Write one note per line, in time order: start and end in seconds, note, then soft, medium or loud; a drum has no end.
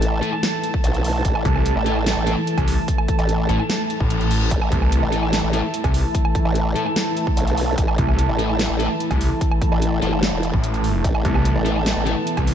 0.00 0.21 A1 medium
0.00 12.54 E3 medium
0.00 12.54 A3 medium
0.00 4.49 A4 medium
0.00 12.54 A5 medium
0.00 closed hi-hat medium
0.22 0.29 A3 medium
0.22 0.29 E4 medium
0.22 0.29 A4 loud
0.22 closed hi-hat soft
0.33 low woodblock medium
0.43 snare loud
0.43 closed hi-hat medium
0.64 closed hi-hat medium
0.74 kick loud
0.84 1.23 B1 loud
0.84 closed hi-hat medium
0.94 closed hi-hat soft
1.04 open hi-hat medium
1.25 1.44 A1 loud
1.25 kick loud
1.25 closed hi-hat medium
1.35 low woodblock medium
1.45 1.74 C2 loud
1.45 kick loud
1.45 closed hi-hat medium
1.56 low woodblock medium
1.66 closed hi-hat medium
1.76 2.15 A1 loud
1.86 1.92 A3 medium
1.86 1.92 E4 medium
1.86 1.92 A4 loud
1.86 closed hi-hat medium
1.96 low woodblock medium
2.06 snare loud
2.06 closed hi-hat medium
2.17 2.36 A1 medium
2.27 2.33 A3 medium
2.27 2.33 E4 medium
2.27 2.33 A4 loud
2.27 closed hi-hat medium
2.47 closed hi-hat medium
2.58 2.76 C2 loud
2.58 kick medium
2.58 closed hi-hat soft
2.58 low woodblock medium
2.68 open hi-hat loud
2.88 kick loud
2.88 closed hi-hat medium
2.98 low woodblock medium
3.08 kick loud
3.08 closed hi-hat medium
3.19 3.48 A1 loud
3.19 closed hi-hat soft
3.19 low woodblock medium
3.29 closed hi-hat medium
3.49 3.58 A1 loud
3.49 3.55 A3 medium
3.49 3.55 E4 medium
3.49 3.55 A4 loud
3.49 closed hi-hat medium
3.60 low woodblock medium
3.70 snare loud
3.70 closed hi-hat medium
3.70 reverse cymbal medium
3.90 closed hi-hat medium
4.00 4.50 A1 loud
4.00 kick loud
4.10 closed hi-hat medium
4.21 closed hi-hat soft
4.31 open hi-hat loud
4.51 4.70 A1 loud
4.51 11.02 E4 medium
4.51 kick loud
4.51 closed hi-hat medium
4.62 low woodblock medium
4.72 5.01 C2 loud
4.72 kick loud
4.72 closed hi-hat medium
4.82 low woodblock medium
4.92 closed hi-hat medium
5.02 5.42 A1 loud
5.12 5.19 A3 medium
5.12 5.19 E4 medium
5.12 5.19 A4 loud
5.12 closed hi-hat medium
5.23 low woodblock medium
5.33 snare loud
5.33 closed hi-hat medium
5.43 5.62 A1 loud
5.53 5.59 A3 medium
5.53 5.59 E4 medium
5.53 5.59 A4 loud
5.53 closed hi-hat medium
5.74 closed hi-hat medium
5.84 6.03 C2 loud
5.84 kick medium
5.84 closed hi-hat soft
5.84 low woodblock medium
5.94 open hi-hat loud
6.15 kick loud
6.15 closed hi-hat medium
6.25 low woodblock medium
6.35 kick loud
6.35 closed hi-hat medium
6.45 6.74 A1 medium
6.45 low woodblock medium
6.55 closed hi-hat medium
6.76 6.82 A3 medium
6.76 6.82 E4 medium
6.76 6.82 A4 loud
6.76 closed hi-hat medium
6.86 low woodblock medium
6.96 snare loud
6.96 closed hi-hat medium
7.17 closed hi-hat medium
7.27 kick loud
7.37 7.76 B1 loud
7.37 closed hi-hat medium
7.47 closed hi-hat soft
7.57 open hi-hat medium
7.78 7.97 A1 loud
7.78 kick loud
7.78 closed hi-hat medium
7.88 low woodblock medium
7.98 8.27 C2 loud
7.98 kick loud
7.98 closed hi-hat medium
8.09 low woodblock medium
8.19 closed hi-hat medium
8.29 8.68 A1 loud
8.39 8.45 A3 medium
8.39 8.45 E4 medium
8.39 8.45 A4 loud
8.39 closed hi-hat medium
8.49 low woodblock medium
8.59 snare loud
8.59 closed hi-hat medium
8.70 8.89 A1 medium
8.79 8.86 A3 medium
8.79 8.86 E4 medium
8.79 8.86 A4 loud
8.79 closed hi-hat medium
9.00 closed hi-hat medium
9.11 9.29 C2 loud
9.11 kick medium
9.11 closed hi-hat soft
9.11 low woodblock medium
9.21 open hi-hat medium
9.41 kick loud
9.41 closed hi-hat medium
9.52 low woodblock medium
9.62 kick loud
9.62 closed hi-hat medium
9.72 10.01 A1 loud
9.72 low woodblock medium
9.82 closed hi-hat medium
10.02 10.31 G1 loud
10.02 10.08 A3 medium
10.02 10.08 E4 medium
10.02 10.08 A4 loud
10.02 closed hi-hat medium
10.13 low woodblock medium
10.23 snare loud
10.23 closed hi-hat medium
10.33 10.52 E1 loud
10.43 closed hi-hat medium
10.54 11.03 A1 loud
10.54 kick loud
10.64 closed hi-hat medium
10.74 closed hi-hat soft
10.84 open hi-hat medium
11.04 11.23 A1 medium
11.04 12.54 B3 medium
11.04 kick loud
11.04 closed hi-hat medium
11.15 low woodblock medium
11.25 11.54 C2 loud
11.25 kick loud
11.25 closed hi-hat medium
11.35 low woodblock medium
11.45 closed hi-hat medium
11.56 11.95 A1 loud
11.65 11.72 A3 medium
11.65 11.72 E4 medium
11.65 11.72 A4 loud
11.65 closed hi-hat soft
11.76 low woodblock medium
11.86 snare loud
11.86 closed hi-hat medium
11.96 12.15 A1 loud
12.06 12.13 A3 medium
12.06 12.13 E4 medium
12.06 12.13 A4 medium
12.06 closed hi-hat medium
12.27 closed hi-hat medium
12.37 12.54 C2 loud
12.37 kick medium
12.37 closed hi-hat soft
12.37 low woodblock medium
12.47 open hi-hat medium